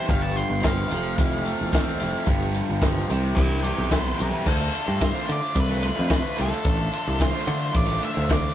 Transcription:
0.07 G1 G2 D3 F3 G3 B3 G4 F5, kick, closed hi-hat
0.22 A5
0.36 C6, closed hi-hat
0.50 G1
0.62 F3 F5, kick, snare, closed hi-hat, tambourine
0.90 F1 F2 C3 F3 A3 C4, closed hi-hat
1.18 F1 E4, kick, closed hi-hat
1.45 A4, closed hi-hat
1.61 E1
1.72 F2 C3 F3 A3 C4, kick, snare, closed hi-hat, tambourine
1.88 snare
2.00 F1 E4, closed hi-hat
2.26 G1 G2 D3 F3 G3 B3 G4, kick, closed hi-hat
2.54 closed hi-hat
2.69 G1
2.82 F3, kick, snare, closed hi-hat, tambourine
2.97 snare
3.09 C2 C3 E3 G3 E4 G4, closed hi-hat
3.35 C2 E4 B4 G5, kick, closed hi-hat
3.62 G4 B4 D5, closed hi-hat
3.78 B1
3.91 C3 E3 G3 B3 E4 G4 B4 C5, kick, snare, closed hi-hat, tambourine
4.18 B1 E4 A4, closed hi-hat
4.45 D2 D3 A3 D4 F4, kick, crash, tambourine
4.60 muted overdriven electric guitar stroke, tambourine
4.72 D3 A3 D4 F4, ride, tambourine
4.85 G2 A3 D4 F4, tambourine
5.00 D3 A3 D4 F4 C5, muted overdriven electric guitar stroke, kick, snare, ride, tambourine
5.12 A3 D4 F4, tambourine
5.16 D3
5.27 D3 A3 D4 F4, ride, tambourine
5.32 D5
5.40 A3 D4 F4, tambourine
5.55 C2, muted overdriven electric guitar stroke, kick, ride, tambourine
5.60 B4
5.68 D3 A3 D4 F4
5.82 D3 A3 D4 F4, ride, tambourine
5.96 F2 D3 A3 D4 F4, tambourine
6.10 D3 A3 D4 F4 B4, kick, snare, ride, tambourine
6.22 muted overdriven electric guitar stroke
6.36 C2 D3 A3 D4 F4, ride, tambourine
6.41 A4
6.51 A3 D4 F4, snare
6.64 A1 D3 A3 D4 F4, kick, ride, tambourine
6.77 muted overdriven electric guitar stroke
6.91 D3 A3 D4 F4, ride, tambourine
7.06 C2 A3 D4 F4, tambourine
7.18 D3 A3 D4 F4 C5, muted overdriven electric guitar stroke, kick, snare, ride, tambourine
7.31 D3 A3 D4 F4, tambourine
7.35 A3
7.45 D3 A3 D4 F4, ride
7.50 tambourine
7.58 A3 D4 F4
7.64 tambourine
7.72 A1 D5, muted overdriven electric guitar stroke, kick, ride
7.77 tambourine
7.86 D3 A3 D4 F4
8.01 D3 A3 D4 F4 E5, ride, tambourine
8.14 D2 D3 A3 D4 F4, tambourine
8.28 D3 A3 D4 F4 D5, kick, snare, ride, tambourine
8.44 muted overdriven electric guitar stroke

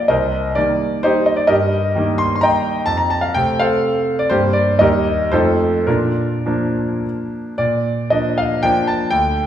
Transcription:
0.08 C2 A#4 C5 D#5
0.55 D#3 G3 A#3 D5
1.03 D#4 G4 C5
1.26 D#5
1.36 D5
1.47 G2 G4 A#4 D#5
1.96 D#3 G3 A#3
2.18 C6
2.36 C6
2.41 D#5 G5 A#5
2.86 F2 A5
2.97 A#5
3.10 A5
3.21 F5
3.34 C3 A3 C4 G5
3.59 A4 C5 F5
4.19 D5
4.30 G2 G3 A#3 G4 C5
4.53 D5
4.79 D#2 G3 A#3 D#4 G4 A#4 D#5
5.32 F2 F3 A3 D#4 F4 A4 C5
5.87 A#2 D4 F4 A#4
6.46 F3 A#3 D4
7.58 A#2 D5
8.10 F3 A#3 D4 D#5
8.38 F5
8.63 F3 A#3 D4 G5
8.87 A5
9.10 D2 G5

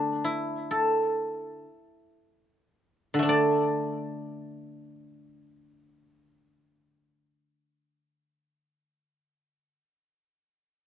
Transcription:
Already playing: D3 A3 D4 D5 E5
0.24 E4
0.71 A4
3.14 D3
3.19 A3 D4
3.29 D5

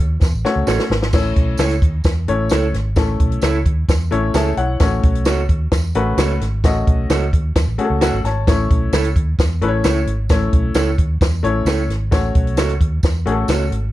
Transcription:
0.00 D#2
0.21 E2, kick, snare, tambourine
0.33 A1
0.45 A3 C#4 F#4 C#5, snare
0.56 C#2
0.67 A1 F#4 A4 C#5, snare, tambourine
0.79 snare
0.90 G#1, snare
1.02 snare
1.13 A1 A3 C#4 E4 C#5, kick, snare, crash, tambourine
1.36 B1, kick, closed hi-hat
1.58 C#2 E4 A4 C#5, snare, closed hi-hat, tambourine
1.71 closed hi-hat
1.82 D#2, kick, closed hi-hat
2.04 E2, kick, snare, closed hi-hat, tambourine
2.27 A1 A3 C#4 E4 C#5, closed hi-hat
2.49 C#2 E4 A4 C#5, snare, closed hi-hat, tambourine
2.73 G#1, snare, closed hi-hat
2.96 A1 A3 C#4 E4 A4, kick, snare, closed hi-hat, tambourine
3.20 B1, kick, closed hi-hat
3.32 closed hi-hat
3.42 C#2 E4 A4 C#5, snare, closed hi-hat, tambourine
3.65 D#2, kick, closed hi-hat
3.88 E2, kick, snare, closed hi-hat, tambourine
4.11 A1 A3 C#4 E4 C#5, closed hi-hat
4.34 C#2 E4 G#4 A4 C#5 E5 A5, snare, closed hi-hat, tambourine
4.57 B1 E4 C#5 F#5, closed hi-hat
4.80 A1 A3 C#4 F#4 C#5, kick, snare, closed hi-hat, tambourine
5.03 B1, kick, closed hi-hat
5.15 closed hi-hat
5.25 C#2 F#4 A4 C#5, snare, closed hi-hat, tambourine
5.49 D#2, kick, closed hi-hat
5.71 E2, kick, snare, closed hi-hat, tambourine
5.95 A1 A3 C#4 F#4 B4, closed hi-hat
6.17 C#2 F#4 A4 C#5, snare, closed hi-hat, tambourine
6.41 G#1, snare, closed hi-hat
6.64 A1 A3 C#4 F#4 D#5, kick, snare, closed hi-hat, tambourine
6.87 B1, kick, closed hi-hat
7.10 C#2 F#4 A4 C#5, snare, closed hi-hat, tambourine
7.33 D#2, kick, closed hi-hat
7.55 E2, kick, snare, closed hi-hat, tambourine
7.67 A1
7.78 A3 C#4 F#4 G#4, closed hi-hat
7.85 A4
7.90 C#2
8.01 F#4 A4 C#5 F#5, snare, closed hi-hat, tambourine
8.12 G#1
8.24 G#1 C#5 A5, snare, closed hi-hat
8.47 A1 A3 C#4 E4 C#5, kick, snare, closed hi-hat, tambourine
8.71 kick, closed hi-hat
8.92 C#2 E4 A4 C#5, snare, closed hi-hat, tambourine
9.04 closed hi-hat
9.16 D#2, kick, closed hi-hat
9.39 E2, kick, snare, closed hi-hat, tambourine
9.61 A1 A3 C#4 E4 B4, closed hi-hat
9.68 C#5
9.84 C#2 E4 A4 C#5, snare, closed hi-hat, tambourine
10.06 G#1, closed hi-hat
10.29 A1 A3 C#4 E4 C#5, kick, snare, closed hi-hat, tambourine
10.53 B1, kick, closed hi-hat
10.74 C#2 E4 A4 C#5, snare, closed hi-hat, tambourine
10.98 D#2, kick, closed hi-hat
11.21 E2, kick, snare, closed hi-hat, tambourine
11.43 A1 A3 C#4 E4 C#5, closed hi-hat
11.65 C#2 E4 A4 C#5, snare, closed hi-hat, tambourine
11.88 G#1, snare, closed hi-hat
12.11 A1 A3 C#4 F#4 C#5, kick, snare, closed hi-hat, tambourine
12.35 B1, kick, closed hi-hat
12.47 closed hi-hat
12.57 C#2 F#4 A4 C#5, snare, closed hi-hat, tambourine
12.69 closed hi-hat
12.81 D#2, kick, closed hi-hat
13.03 E2, kick, snare, closed hi-hat, tambourine
13.26 A1 A3 C#4 F#4 G#4, closed hi-hat
13.32 A4
13.48 C#2 F#4 A4 C#5, snare, closed hi-hat, tambourine
13.71 G#1, closed hi-hat

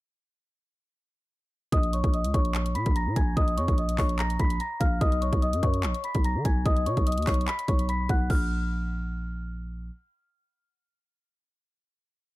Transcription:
1.72 A#1 D#5 D#6, kick, closed hi-hat
1.83 closed hi-hat
1.93 C#5 C#6, closed hi-hat
2.04 A#1, kick, closed hi-hat
2.13 D#5 D#6, closed hi-hat
2.24 C#2, closed hi-hat
2.34 A#1 C#5 C#6, kick, closed hi-hat
2.45 closed hi-hat
2.55 clap, closed hi-hat
2.66 closed hi-hat
2.75 A#2 B5 B6, closed hi-hat
2.86 A#1, kick, closed hi-hat
2.96 A#5 A#6, closed hi-hat
3.07 A#2
3.16 A#1 G#5 G#6, kick, closed hi-hat
3.37 A#1 D#5 D#6, kick, closed hi-hat
3.48 closed hi-hat
3.57 F2 C#5 C#6, closed hi-hat
3.68 A#1, kick, closed hi-hat
3.78 D#5 D#6, closed hi-hat
3.89 closed hi-hat
3.98 A#1 C#5 C#6, kick, clap, open hi-hat
4.09 closed hi-hat
4.19 A#5 A#6, clap, closed hi-hat
4.30 closed hi-hat
4.40 A#1 B5 B6, kick, closed hi-hat
4.50 closed hi-hat
4.60 A#5 A#6, closed hi-hat
4.80 A#1 F5 F6, kick, closed hi-hat
5.01 B1 D#5 D#6, kick, closed hi-hat
5.12 closed hi-hat
5.22 C#5 C#6, closed hi-hat
5.33 B1, kick, closed hi-hat
5.42 D#5 D#6, closed hi-hat
5.53 F#2, closed hi-hat
5.63 F#2 C#5 C#6, kick, closed hi-hat
5.74 closed hi-hat
5.83 A#1, clap, closed hi-hat
5.94 closed hi-hat
6.04 B5 B6, closed hi-hat
6.15 B1, kick, closed hi-hat
6.24 A#5 A#6, closed hi-hat
6.35 D#3
6.45 B1 G#5 G#6, kick, closed hi-hat
6.66 B1 D#5 D#6, kick, closed hi-hat
6.76 closed hi-hat
6.86 B2 C#5 C#6, closed hi-hat
6.97 B1, kick, closed hi-hat
7.07 D#5 D#6, closed hi-hat
7.12 closed hi-hat
7.17 D#2, closed hi-hat
7.22 closed hi-hat
7.27 B1 C#5 C#6, kick, clap, closed hi-hat, open hi-hat
7.34 closed hi-hat
7.41 closed hi-hat
7.48 B5 B6, clap, closed hi-hat
7.59 closed hi-hat
7.68 B1 C#5 C#6, kick, closed hi-hat
7.79 closed hi-hat
7.89 B5 B6, closed hi-hat
8.09 B1 F#5 F#6, kick, closed hi-hat
8.30 A#1 F6, kick, crash

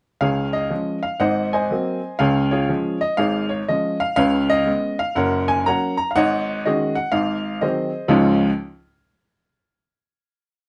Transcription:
0.21 C#2 C#3 G#4 C#5 F5
0.53 D#5
0.70 F3 G#3 C#4
1.03 F5
1.20 G#1 G#2 C5 D#5 F#5
1.53 C5 D#5 G#5
1.71 F#3 A#3 C4
2.19 C#2 C#3 G#4 C#5 F5
2.51 F4 G#4 C#5
2.69 F3 G#3 C#4
3.01 D#5
3.17 G#1 G#2 G#4 C#5 F5
3.49 C#5
3.68 F3 G#3 C#4 D#5
4.00 F5
4.16 C#2 C#3 B4 C#5 F5
4.50 D#5
4.66 G#3 B3 C#4
4.99 F5
5.15 F#1 F#2 A#4 C#5 F#5
5.48 G#5
5.66 F#3 A#3 C#4 C#5 F#5 A#5
5.97 A#5
6.11 F5
6.15 G#1 G#2 C#5 D#5 F#5
6.66 D#3 G#3 C#4 F#4 G#4 D#5
6.95 F#5
7.12 G#1 G#2 F5
7.61 D#3 F#3 C4 G#4 C5 D#5
8.08 C#2 G#2 F3 G#3 C#4 F4 C#5

